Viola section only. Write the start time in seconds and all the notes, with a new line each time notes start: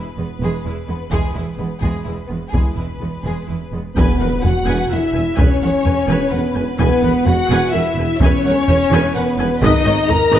0.17 G#3
0.42 G#3
0.66 G#3
0.88 G#3
1.10 G#3
1.34 G#3
1.59 G#3
1.82 G#3
2.07 G#3
2.29 G#3
2.53 G#3
2.77 G#3
3.01 G#3
3.24 G#3
3.47 G#3
3.73 G#3
3.96 B4 G#5
4.20 A#4 F#5
4.42 B4 G#5
4.65 B4 G#5
4.88 A#4 F#5
5.13 B4 G#5
5.36 B4 G#5
5.60 A#4 F#5
5.85 B4 G#5
6.08 B4 G#5
6.30 A#4 F#5
6.54 B4 G#5
6.78 B4 G#5
7.03 A#4 F#5
7.26 B4 G#5
7.50 B4 G#5
7.73 A#4 F#5
7.99 B4 G#5
8.23 B4 G#5
8.46 A#4 F#5
8.69 B4 G#5
8.93 B4 G#5
9.16 A#4 F#5
9.39 B4 G#5
9.63 B4 D#5
9.85 A#4 C#5
10.09 B4 D#5
10.32 B4 D#5